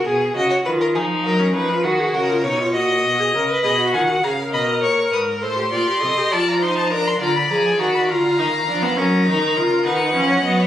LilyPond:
<<
  \new Staff \with { instrumentName = "Violin" } { \time 12/8 \key ees \minor \tempo 4. = 67 r1. | ces'''8 aes''8 bes''8 ces'''8 des'''8 ees'''8 c'''4. a''16 bes''16 c'''16 a''16 bes''16 c'''16 | bes''16 ces'''16 bes''16 aes''16 bes''16 ces'''16 bes''4. bes''4. ges''4. | }
  \new Staff \with { instrumentName = "Violin" } { \time 12/8 \key ees \minor aes'8 ees''16 des''16 ces''16 bes'16 aes'8 bes'8 ces''8 ges'8 bes'8 des''8 ees''4. | ees''8 ges''8 f''8 ees''8 des''8 ces''16 bes'16 c''8 d''8 ees''8 d''8 c''8 bes'8 | d''4. f''4. bes'4. ces''8. des''16 ees''16 des''16 | }
  \new Staff \with { instrumentName = "Viola" } { \time 12/8 \key ees \minor aes'8 ges'8 f'8 ees'8. des'16 ees'16 f'16 ges'16 aes'16 ges'16 f'16 ees'16 f'16 ges'8. aes'16 bes'16 ces''16 | aes'16 ges'16 f'16 ges'16 aes'16 bes'4.~ bes'16 a'16 g'16 f'16 g'16 a'16 g'16 f'8 ees'8 d'8 | f'8 aes'8 ges'8 f'8 ees'8 d'16 ces'16 des'8 ees'8 f'8 ees'8 des'8 ces'8 | }
  \new Staff \with { instrumentName = "Cello" } { \clef bass \time 12/8 \key ees \minor ces8 des8 ees8 f8 ges8 f8 ees8 des8 ces8 bes,8 ces8 des8 | ces8 ees8 des8 ces8 bes,8 aes,8 a,8 bes,8 c8 f4. | d8 f8 ees8 d8 ees8 f8 ges8 ees8 des8 ees8 f8 ges8 | }
>>